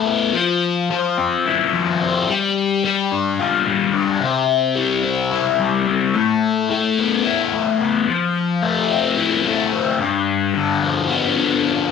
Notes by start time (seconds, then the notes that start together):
Already playing: A3 E4
0.05 B3
0.34 F3
0.90 F3
1.17 C4
1.45 E4
1.73 F3
2.01 C4
2.29 G3
2.85 G3
3.12 D4
3.39 F4
3.67 G3
3.93 D4
4.20 C3
4.75 G3
5.03 C4
5.31 E4
5.60 G3
5.87 C4
6.15 A3
6.70 A3
6.98 B3
7.24 E4
7.54 A3
7.81 B3
8.08 F3
8.63 A3
8.91 C4
9.17 E4
9.44 A3
9.72 C4
9.99 G2
10.54 D3
10.81 F3
11.09 B3
11.37 D3
11.64 F3